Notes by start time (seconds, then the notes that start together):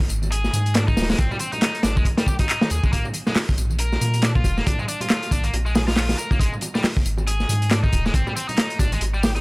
0.01 tambourine
0.09 G#1, closed hi-hat, tambourine
0.22 tambourine, high bongo, high conga
0.31 G#4, closed hi-hat, tambourine
0.44 snare, tambourine, high bongo
0.53 G#2, closed hi-hat, tambourine, high conga, low conga
0.66 closed hi-hat, tambourine
0.75 D4, snare, clap, closed hi-hat, tambourine, high bongo
0.88 D#4, kick, tambourine, high conga
0.97 D#1, snare, open hi-hat, tambourine, high bongo
1.02 snare, open hi-hat
1.09 G#3, snare, open hi-hat, tambourine
1.14 snare, open hi-hat
1.18 G#1 C4, kick, closed hi-hat, tambourine
1.31 G3, tambourine, high bongo, low conga
1.39 C4, closed hi-hat, tambourine, high conga
1.52 D#4, closed hi-hat, tambourine, high bongo, low conga
1.62 snare, clap, closed hi-hat, tambourine
1.75 closed hi-hat, tambourine
1.83 G#1 D4, snare, closed hi-hat, tambourine, high bongo
1.96 G#3, kick, tambourine, high conga
2.05 kick, closed hi-hat, tambourine, high bongo
2.18 G3, snare, closed hi-hat, tambourine
2.27 G4, kick, tambourine, high conga, low conga
2.39 D#4, kick, closed hi-hat, tambourine, high bongo
2.49 clap, closed hi-hat, tambourine
2.61 snare, tambourine, high bongo, high conga
2.70 D#2 G#4, closed hi-hat, tambourine
2.84 G#3, kick, tambourine
2.93 A#1 A#3, kick, closed hi-hat, tambourine
3.05 tambourine, high bongo, low conga
3.14 closed hi-hat, tambourine, high conga
3.27 G#3, snare, tambourine, low conga
3.35 snare, clap, open hi-hat, tambourine, high bongo
3.49 kick, tambourine
3.58 A#1, closed hi-hat, tambourine, high bongo
3.70 tambourine, high conga
3.79 A#4, closed hi-hat, tambourine
3.92 snare, tambourine, high bongo
4.01 A#2, closed hi-hat, tambourine, high conga, low conga
4.14 closed hi-hat, tambourine, high bongo
4.22 D4, snare, clap, closed hi-hat, tambourine
4.35 F4, kick, tambourine, high conga
4.44 F1, kick, closed hi-hat, tambourine, high bongo
4.57 A#3, snare, tambourine
4.66 A#1 D4, kick, closed hi-hat, tambourine, high bongo
4.79 G#3, tambourine, low conga
4.88 D4, closed hi-hat, tambourine, high conga
5.00 F4, closed hi-hat, tambourine, high bongo, low conga
5.10 snare, clap, closed hi-hat, tambourine
5.23 closed hi-hat, tambourine, high bongo
5.31 A#1 D4, kick, closed hi-hat, tambourine
5.44 A#3, closed hi-hat, tambourine, high conga
5.53 A#1, closed hi-hat, tambourine, high bongo
5.66 G#3, tambourine
5.75 G#4, snare, open hi-hat, tambourine, high bongo, high conga, low conga
5.88 F4, snare, open hi-hat, tambourine
5.96 snare, clap, open hi-hat, tambourine
6.09 snare, open hi-hat, tambourine, high bongo, high conga
6.18 A#4, closed hi-hat, tambourine
6.31 A#3, kick, tambourine, high bongo
6.40 G#1 G#3, kick, closed hi-hat, tambourine
6.52 tambourine, low conga
6.61 closed hi-hat, tambourine, high bongo, high conga
6.75 G3, snare, tambourine, low conga
6.84 snare, clap, open hi-hat, tambourine, high bongo
6.96 kick, tambourine
7.06 G#1, closed hi-hat, tambourine
7.18 tambourine, high bongo, high conga
7.27 G#4, closed hi-hat, tambourine
7.40 snare, tambourine, high bongo
7.49 G#2, closed hi-hat, tambourine, high conga, low conga
7.62 closed hi-hat, tambourine
7.71 D4, snare, clap, closed hi-hat, tambourine, high bongo
7.83 D#4, kick, tambourine, high conga
7.93 D#1, kick, closed hi-hat, tambourine, high bongo
8.05 G#3, snare, tambourine
8.14 G#1 C4, kick, closed hi-hat, tambourine
8.27 G3, tambourine, high bongo, low conga
8.36 C4, closed hi-hat, tambourine, high conga
8.49 D#4, closed hi-hat, tambourine, high bongo, low conga
8.57 snare, clap, closed hi-hat, tambourine
8.70 closed hi-hat, tambourine
8.79 G#1 D4, kick, closed hi-hat, tambourine, high bongo
8.92 G#3, closed hi-hat, tambourine, high conga
9.01 G#1, closed hi-hat, tambourine, high bongo
9.14 G3, tambourine
9.23 G4, snare, open hi-hat, tambourine, high conga, low conga
9.36 D#4, closed hi-hat, tambourine, high bongo